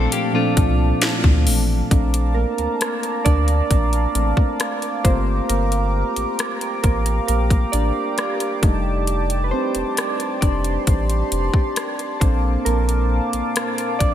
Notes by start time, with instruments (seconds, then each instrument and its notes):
Already playing: synth keys A#2 F3 C4 D4 A4, analog synth pad A3 F5 A5 D6, clean electric guitar C4 A4
0.12 clean electric guitar A#3 G4, closed hi-hat
0.33 synth keys A#2 F3 C4 D4 A4, clean electric guitar A3 F4
0.57 analog synth bass C2, kick, closed hi-hat
1.02 snare, closed hi-hat
1.24 analog synth bass D2, kick
1.47 analog synth bass A1, open hi-hat
1.90 analog synth bass A#1, synth keys A3 C4 D4, analog synth pad F5 A5 A#5 D6, kick, closed hi-hat
2.14 closed hi-hat
2.35 synth keys A#3 A#4
2.58 analog synth bass D2, closed hi-hat
2.81 cross-stick, closed hi-hat
3.03 closed hi-hat
3.25 analog synth bass D2, synth keys D4 D5, kick, closed hi-hat
3.48 closed hi-hat
3.71 analog synth bass A#1, kick, closed hi-hat
3.93 closed hi-hat
4.15 analog synth bass A1, synth keys A3 C4 D4, closed hi-hat
4.37 kick
4.60 cross-stick, closed hi-hat
4.82 closed hi-hat
5.04 analog synth bass G1, synth keys A3 A#3 C4 F4 C5, analog synth pad G4 A#5, kick, closed hi-hat
5.49 analog synth bass G1, synth keys A#3 A#4, closed hi-hat
5.72 closed hi-hat
6.16 analog synth bass A1, closed hi-hat
6.39 cross-stick, closed hi-hat
6.61 closed hi-hat
6.83 analog synth bass A1, synth keys A#3 A#4, kick, closed hi-hat
7.06 closed hi-hat
7.28 analog synth bass A#1, synth keys A#3 A#4, closed hi-hat
7.50 kick, closed hi-hat
7.72 analog synth bass A1, synth keys D4 D5, closed hi-hat
8.18 cross-stick, closed hi-hat
8.40 closed hi-hat
8.62 analog synth bass F1, synth keys G3 A3 D4 D#4, analog synth pad D5 A5, kick, closed hi-hat
9.07 closed hi-hat
9.30 closed hi-hat
9.44 synth keys B4
9.51 synth keys C4 C5
9.75 analog synth bass F1, closed hi-hat
9.97 cross-stick, closed hi-hat
10.20 closed hi-hat
10.41 analog synth bass F1, synth keys D4 D5, analog synth pad C6, kick, closed hi-hat
10.64 closed hi-hat
10.87 analog synth bass A1, kick, closed hi-hat
11.10 closed hi-hat
11.32 analog synth bass F1, closed hi-hat
11.54 kick
11.76 cross-stick, closed hi-hat
11.99 closed hi-hat
12.20 analog synth bass A#1, analog synth pad A#3 F5 D6, synth keys C4 D4 A4 C5, kick, closed hi-hat
12.65 analog synth bass A#1, synth keys A#3 A#4, closed hi-hat
12.89 closed hi-hat
13.33 analog synth bass A#1, closed hi-hat
13.56 cross-stick, closed hi-hat
13.78 closed hi-hat
13.99 analog synth bass A#1, synth keys D4 D5, kick, closed hi-hat